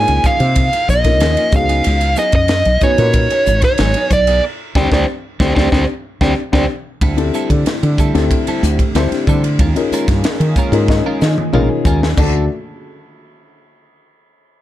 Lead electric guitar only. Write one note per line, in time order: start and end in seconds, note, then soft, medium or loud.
0.00 0.28 G#5 medium
0.26 0.90 F5 medium
0.90 1.55 D#5 medium
1.56 2.15 F5 loud
2.19 2.34 D#5 medium
2.35 2.80 D#5 medium
2.83 3.60 C#5 medium
3.64 4.09 C#5 medium
4.13 4.42 D5 medium
4.77 4.87 C5 medium
4.77 4.87 D5 medium
4.77 4.87 G5 medium
4.93 5.03 C5 medium
4.93 5.03 D5 medium
4.93 5.03 G5 medium
5.41 5.51 C5 medium
5.41 5.51 D5 medium
5.41 5.51 G5 medium
5.55 5.66 C5 medium
5.55 5.66 D5 medium
5.55 5.66 G5 loud
5.72 5.83 C5 medium
5.72 5.83 D5 medium
5.72 5.83 G5 medium
6.21 6.32 C5 medium
6.21 6.32 D5 medium
6.21 6.32 G5 medium
6.53 6.64 C5 medium
6.53 6.64 D5 medium
6.53 6.64 G5 medium